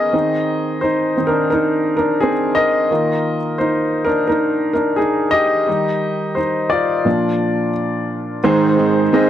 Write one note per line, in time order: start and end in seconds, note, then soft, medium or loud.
0.00 0.15 B3 medium
0.00 0.16 C#4 medium
0.00 0.14 D#4 medium
0.00 0.79 G#4 medium
0.00 0.16 A#4 medium
0.00 0.16 B4 medium
0.00 0.85 D#5 loud
0.12 1.13 D#3 soft
0.12 1.13 C4 soft
0.12 0.82 D#4 soft
0.81 1.16 D#4 soft
0.81 1.25 C5 medium
1.17 1.48 D#3 soft
1.17 1.48 C4 soft
1.17 1.49 D#4 medium
1.27 1.50 D4 medium
1.27 1.49 A#4 medium
1.50 1.95 D#4 medium
1.50 1.94 A#4 medium
1.97 2.20 D4 medium
1.97 2.19 A#4 medium
2.20 2.30 C4 medium
2.20 2.28 G#4 medium
2.55 3.56 A#4 medium
2.55 3.55 D#5 medium
2.91 3.37 D#3 medium
2.91 3.37 A#3 soft
2.91 3.37 F4 medium
3.58 4.03 D#4 medium
3.58 4.06 C5 medium
4.05 4.28 D4 medium
4.05 4.26 A#4 medium
4.28 4.72 D#4 medium
4.28 4.71 A#4 medium
4.73 4.97 D4 medium
4.73 4.98 A#4 medium
4.96 5.31 D#4 medium
4.96 5.33 G#4 medium
5.31 6.33 G4 medium
5.31 6.39 D#5 loud
5.67 6.67 D#3 soft
5.67 6.67 G3 soft
5.67 6.36 D#4 medium
6.35 6.69 D#4 medium
6.35 6.68 C5 medium
6.70 7.71 F4 medium
6.70 7.70 D5 medium
7.05 8.39 A#2 soft
7.05 8.40 F3 soft
7.05 8.40 D4 soft
8.43 8.78 G#2 medium
8.43 9.00 G#2 medium
8.43 9.30 G#2 medium
8.43 8.78 D#3 medium
8.43 9.30 D#3 medium
8.43 8.79 G#3 medium
8.43 9.01 C4 medium
8.43 8.78 C4 medium
8.43 9.01 D#4 medium
8.43 8.77 D#4 medium
8.43 9.01 G#4 medium
8.43 8.76 G#4 medium
8.43 9.02 C5 medium
8.78 9.11 G#3 soft
8.78 9.12 C4 soft
8.78 9.13 D#4 medium
8.78 9.13 G#4 medium
9.12 9.30 G#2 medium
9.12 9.30 G#3 medium
9.12 9.30 C4 medium
9.12 9.30 D#4 medium
9.12 9.30 G#4 medium
9.12 9.30 D#5 medium